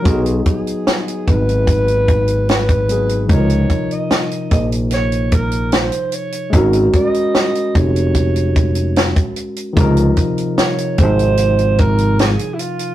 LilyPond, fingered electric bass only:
\new Staff \with { instrumentName = "Fingered electric bass" } { \clef bass \time 4/4 \key des \major \tempo 4 = 74 ces,8 r4 aes,,2~ aes,,8 | des,8 r4 bes,,4.~ bes,,16 r8. | aes,,8 r4 f,,4.~ f,,16 r8. | des,8 r4 aes,,4.~ aes,,16 r8. | }